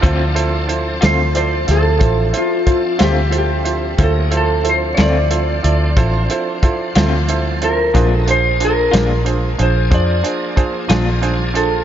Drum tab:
HH |xxxxxxxxxxxx|xxxxxxxxxxxx|xxxxxxxxxxxx|
SD |---o-o---o--|---o-----o--|---o-----o--|
BD |o-----o-o---|o-----o-o---|o-----o-o---|